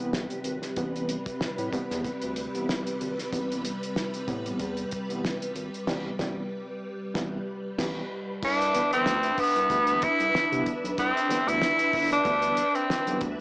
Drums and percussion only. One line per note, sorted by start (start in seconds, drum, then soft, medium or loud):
0.13 snare loud
0.30 closed hi-hat soft
0.44 closed hi-hat medium
0.62 snare soft
0.62 closed hi-hat soft
0.76 kick medium
0.76 closed hi-hat medium
0.96 closed hi-hat soft
1.09 closed hi-hat medium
1.26 kick medium
1.26 closed hi-hat medium
1.41 snare loud
1.58 closed hi-hat soft
1.73 kick medium
1.73 closed hi-hat medium
1.91 snare soft
1.91 closed hi-hat medium
2.04 kick medium
2.04 closed hi-hat medium
2.22 closed hi-hat soft
2.36 closed hi-hat medium
2.55 closed hi-hat soft
2.69 snare loud
2.87 closed hi-hat soft
3.01 closed hi-hat medium
3.19 snare soft
3.19 closed hi-hat soft
3.33 kick loud
3.33 closed hi-hat medium
3.52 closed hi-hat soft
3.65 closed hi-hat medium
3.83 closed hi-hat medium
3.96 snare loud
4.14 closed hi-hat soft
4.28 kick medium
4.28 closed hi-hat medium
4.46 closed hi-hat medium
4.59 kick medium
4.59 closed hi-hat medium
4.77 closed hi-hat soft
4.91 kick medium
4.91 closed hi-hat medium
5.10 closed hi-hat soft
5.25 snare loud
5.42 closed hi-hat medium
5.56 closed hi-hat medium
5.74 closed hi-hat soft
5.87 kick loud
5.87 snare loud
5.87 crash medium
6.19 kick loud
6.19 snare loud
7.15 kick loud
7.15 snare loud
7.79 kick medium
7.79 snare loud
7.79 crash medium
8.43 kick loud
8.43 crash loud
8.62 closed hi-hat medium
8.75 closed hi-hat medium
8.93 closed hi-hat medium
9.06 snare loud
9.23 closed hi-hat soft
9.38 kick medium
9.38 open hi-hat medium
9.56 closed hi-hat medium
9.70 kick medium
9.70 closed hi-hat medium
9.87 closed hi-hat medium
10.02 kick medium
10.02 closed hi-hat medium
10.20 closed hi-hat soft
10.35 snare loud
10.52 closed hi-hat medium
10.66 kick medium
10.66 closed hi-hat medium
10.85 closed hi-hat medium
10.98 kick loud
10.98 closed hi-hat medium
11.17 closed hi-hat medium
11.30 closed hi-hat medium
11.48 closed hi-hat medium
11.62 snare loud
11.79 closed hi-hat medium
11.93 kick medium
11.93 open hi-hat medium
12.12 snare soft
12.12 closed hi-hat medium
12.25 kick medium
12.25 closed hi-hat medium
12.42 closed hi-hat medium
12.57 closed hi-hat medium
12.75 closed hi-hat soft
12.90 snare loud
13.07 closed hi-hat soft
13.21 kick medium
13.21 closed hi-hat medium